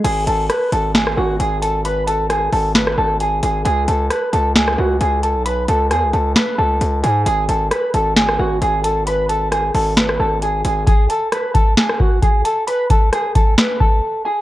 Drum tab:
CC |x---------------|----------------|----------------|----------------|
HH |x-x-x-x-x---x-x-|x-x-x-o-x---x-x-|x-x-x-x-x---x-x-|x-x-x-x-x---x-x-|
SD |----r---or------|----r---or------|----r---or------|----r---o-------|
BD |----------------|----------------|----------------|----------------|

CC |----------------|----------------|----------------|----------------|
HH |x-x-x-x-x---x-x-|x-x-x-o-x---x-x-|x-x-x-x-x---x-x-|x-x-x-x-x-------|
SD |----r---or------|----r---or------|----r---or------|----r---o-------|
BD |----------------|----------------|o-----o---o-o---|--o---o---o-----|